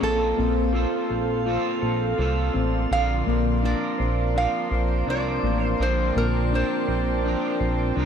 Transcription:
0.00 A#1 A#3 C4 F4 A4 C5 F5 C6
0.37 A#1 C4
0.72 A#3 C4 F4 A4 F5
1.09 A#1 A4
1.45 A#3 C4 F4
1.50 A4
1.81 A#1 A4
2.18 C2 A#3 C4 F4 A4 D5
2.54 A1 C4
2.91 A#1 A#2 D3 F3 C4 D4 A#4 D5 F5
3.27 A#1 A#3
3.63 F3 C4 D4 D5
3.67 A#4
3.98 A#1 C5
4.34 F3 C4 D4 C5 F5
4.39 D4 A#4
4.71 A#1 C5
5.07 C2 F3 C4 D4 A#4 D5
5.43 A1 A#3
5.64 C5
5.80 A#1 A#2 D3 F3 C4 D4 A#4 C5 G5 A5
6.16 A#1 A#3 A#4
6.52 F3 C4 D4 A#4 C5
6.87 A#1 C5
7.24 F3 C4 D4
7.28 A#4
7.60 A#1 C5
7.96 C2 F3 C4 D4 A#4 D5

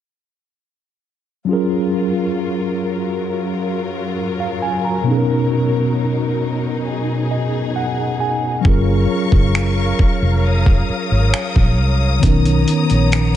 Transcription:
1.45 F#2 F#3 C#4 F4 A#4
1.49 F4 G#4
1.53 A#4
3.28 F4
4.40 F5
4.62 G#5
4.85 A#5
5.03 B2 B3 D#4
5.07 C#4 D#4
5.11 G#4
5.18 A#4
6.86 G#4
7.31 D#5
7.76 F#5
8.20 G#5
8.61 F#3 C#4 A#4 F5 C#6, kick
8.65 F#1 F4 G#4 C#5
8.69 A#4
9.32 F#1, kick
9.55 finger snap
9.99 muted fingered electric bass stroke, kick
10.22 F1
10.44 D#6
10.66 kick
10.89 muted fingered electric bass stroke
11.11 G#1
11.34 finger snap
11.56 A#1, kick
11.79 C2
12.20 B1 D#3 B3, kick, closed hi-hat
12.24 B3 C#4 D#4 A#5
12.28 A#4
12.45 closed hi-hat
12.68 closed hi-hat
12.90 A#1, closed hi-hat
13.12 finger snap, closed hi-hat

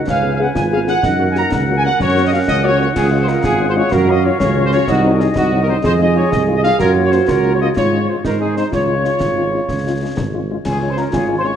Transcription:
0.07 C#2 C#4 B4 F5 G#5, concert bass drum, snare
0.23 B3 C#4 G#4
0.33 F5
0.39 B3 C#4 G#4 F#5
0.55 G#1 F4 G#5, concert bass drum, snare
0.71 B3 C#4 G#4 F5
0.87 B3 C#4 G#4 F#5, snare
1.02 F#2 D#4 A#4 F#5, concert bass drum, snare
1.19 A#3 C#4 F#4
1.30 G#5
1.35 A#3 C#4 F#4 A#5, snare
1.51 C#2 F#5, concert bass drum, snare
1.68 A#3 C#4 F#4
1.77 G#5
1.83 A#3 C#4 F#4 F#5
1.99 F#2 C#4 C#5, concert bass drum, snare
2.15 A#3 C#4 F#4
2.25 D#5
2.31 A#3 C#4 F#4 F5
2.47 C#2 D#5, concert bass drum, snare
2.63 A#3 C#4 F#4 C#5
2.79 A#3 C#4 F#4 C#5
2.95 C#2 F4 G#4, concert bass drum, snare, crash
3.11 G#3 C#4 F4
3.20 C5
3.27 G#3 C#4 F4 A#4, snare
3.43 G#1 G#4, concert bass drum, snare
3.59 G#3 C#4 F4
3.68 C5
3.75 G#3 C#4 F4 C#5
3.91 F#2 F#4 A#4 F5, concert bass drum, snare
4.07 F#3 C#4 F4 D#5
4.24 F#3 C#4 F4 C#5
4.39 C#2 C#4 C#5, concert bass drum, snare
4.56 F#3 C#4 F4
4.64 C5
4.72 F#3 C#4 F4 C#5, snare
4.88 C2 D#4 F#4 D#5, concert bass drum, snare
5.04 F#3 C4 D#4
5.14 A#4
5.20 F#3 C4 D#4 G#4, snare
5.36 C2 D#4 F#4, concert bass drum, snare
5.52 F#3 C4 D#4
5.61 A#4
5.67 F#3 C4 D#4 C5
5.83 F2 G#4 C5, concert bass drum, snare
5.98 G#3 D#4 F4 D#5
6.15 G#3 D#4 F4 C#5
6.30 C2 D#5, concert bass drum, snare
6.47 G#3 D#4 F4
6.56 D#5
6.62 G#3 D#4 F4 F5, snare
6.79 F#2 F4 F#4 A#4 C#5, concert bass drum, snare, crash
6.96 A#3 C#4 F4
7.04 C#5
7.11 A#3 C#4 F4 C5, snare
7.27 C#2 F4 A#4 C#5, concert bass drum, snare
7.44 A#3 C#4 F4
7.53 C#5
7.60 A#3 C#4 F4 D#5
7.76 G#2 F4 C#5, concert bass drum, snare
7.92 G#3 C#4 F4
8.07 G#3 C#4 F4 C5
8.24 G#2 D#4 A#4 C5, concert bass drum, snare
8.40 G#3 C4 D#4 G#4
8.57 G#3 C4 D#4 C5, snare
8.72 C#2 F4 C#5, concert bass drum, snare
8.88 G#3 C#4 F4
9.03 G#3 C#4 F4, snare
9.20 G#1, concert bass drum, snare
9.37 G#3 C#4 F4
9.53 G#3 C#4 F4
9.68 C#2, concert bass drum, snare
9.85 G#3 C#4 F4
10.01 G#3 C#4 F4
10.16 G#1, concert bass drum, snare
10.33 G#3 C#4 F4
10.50 G#3 C#4 F4
10.64 C#2 C#4 F4 G#4 C#5 G#5, concert bass drum, snare, crash
10.82 G#3 C#4 F4
10.90 C5 C6
10.96 G#3 C#4 F4 A#4 A#5, snare
11.12 G#1 F4 G#4 C#5 G#5, concert bass drum, snare
11.28 G#3 C#4 F4
11.37 C5 C6
11.44 G#3 C#4 F4 C#5 C#6

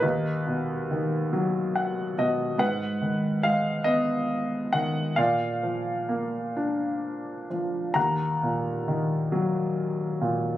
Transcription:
0.00 D#2 D#4 B4
0.47 B2
0.91 D#3
1.33 F#3
1.76 F#5
2.18 B2 D#5
2.58 G#2 B4 F#5
3.02 D#3
3.43 G#3 F5
3.84 B3 D#5
4.73 D#3 F#5
5.16 A#2 D5 F5
5.63 F3
6.09 A#3
6.57 D4
7.51 F3
7.94 D#2 F#5 A#5
8.43 A#2
8.88 D#3
9.32 F#3
10.21 A#2

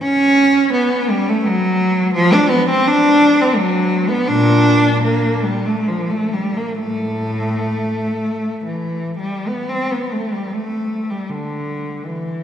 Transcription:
0.02 C#4
0.74 B3
1.10 G3
1.29 A3
1.45 F#3
2.14 F3
2.33 D4
2.50 B3
2.69 C4
2.87 D4
3.41 C4
3.57 F#3
4.09 B3
4.27 A#2 D4
5.04 A#3
5.44 G3
5.65 A3
5.87 F3
6.10 A3
6.33 G3
6.56 A#3
6.79 A2 A3
8.66 E3
9.19 G3
9.48 B3
9.69 C4
9.91 B3
10.12 A3
10.33 G3
10.53 A3
11.10 G3
11.30 D3
12.06 E3

